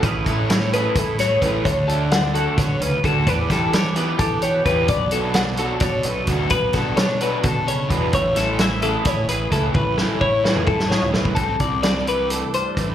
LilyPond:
<<
  \new Staff \with { instrumentName = "Clean electric guitar" } { \time 7/8 \key a \major \tempo 4 = 130 b'8 a'8 cis''8 b'8 a'8 cis''8 b'8 | cis''8 a'8 fis''8 a'8 cis''8 b'8 a'8 | b'8 a'8 cis''8 b'8 a'8 cis''8 b'8 | d''8 a'8 fis''8 a'8 cis''8 b'8 a'8 |
b'8 a'8 cis''8 b'8 a'8 cis''8 b'8 | cis''8 a'8 e''8 a'8 cis''8 b'8 a'8 | b'8 a'8 cis''8 b'8 a'8 cis''8 b'8 | a'8 d''8 d''8 b'8 a'8 c''8 b'8 | }
  \new Staff \with { instrumentName = "Clean electric guitar" } { \time 7/8 \key a \major << { <e cis' e' gis'>4 cis'16 e'16 gis'8 e'8 fis'16 gis'8. | r4 d'8 fis'2 | <b d' g'>4 g'8 g'8 g'8 g'4 | r4 d'8 a'8 d'8 a'4 |
r4 d'8 a'2 | r4 e'8 gis'8 e'8 gis'4 | r4 e'8 fis'16 gis'16 e'8 gis'4 | r4 d'8 g'8 a8 d'8 a8 | } \\ { a,4. e4 a,4 | d4. fis8 b,8 cis8 d8 | e4. b4 b,4 | b,4. fis4 fis,4 |
b,4. fis8 d8 cis8 b,8 | a,4. e4 a,4 | a,4. e4 a,4 | c4. e4 g,4 | } >> }
  \new Staff \with { instrumentName = "Overdriven electric guitar" } { \time 7/8 \key a \major r8 <a cis' e' a'>8 r8 <a cis' e' a'>8 r4 <a cis' e' a'>8 | r8 <d a d' fis'>8 r8 <d a d' fis'>8 r4 <d a d' fis'>8 | r8 <e b e' g'>8 r8 <e b e' g'>8 r4 <e b e' g'>8 | r8 <fis b d' fis'>8 r8 <fis b d' fis'>8 r4 <fis b d' fis'>8 |
r8 <fis b d' fis'>8 r8 <fis b d' fis'>8 r4 <fis b d' fis'>8 | r8 <e a cis' e'>8 r8 <e a cis' e'>8 r4 <e a cis' e'>8 | r8 <e a cis' e'>8 r8 <e a cis' e'>8 r4 <e a cis' e'>8 | r2. r8 | }
  \new Staff \with { instrumentName = "Fingered electric bass" } { \clef bass \time 7/8 \key a \major a,,8 a,4. a,4 a,,8 | d,2 d8 d,8 d,8 | e,8 e4. e4 e,8 | b,,2 b,8 b,,8 d,8 |
b,,8 b,4. b,4 e,8 | a,,2 a,8 a,,8 cis,8 | a,,8 a,4. a,4 b,,8 | c,8 c,2 r8 a,,8 | }
  \new DrumStaff \with { instrumentName = "Drums" } \drummode { \time 7/8 <hh bd>8 <hh bd>8 <hh sn>8 hh8 <hh bd>8 <hh sn>8 <hh bd>8 | <hh bd>8 hh8 <hh sn>8 hh8 <hh bd sn>8 hh8 <hh bd>8 | <hh bd>8 <hh bd sn>8 <hh sn>8 hh8 <hh bd>8 hh8 <hh bd>8 | <hh bd>8 hh8 <hh sn>8 hh8 <hh bd>8 hh8 <hh bd>8 |
<hh bd>8 <hh bd sn>8 <hh sn>8 hh8 <hh bd>8 hh8 <hh bd>8 | <hh bd>8 <hh sn>8 <hh sn>8 hh8 <hh bd sn>8 hh8 <hh bd>8 | <bd tommh>8 sn8 bd8 sn16 toml16 <bd toml>16 sn16 sn16 tomfh16 sn16 bd16 | <hh bd>8 <hh bd>8 <hh sn>8 hh8 hh8 hh8 <hh bd>8 | }
>>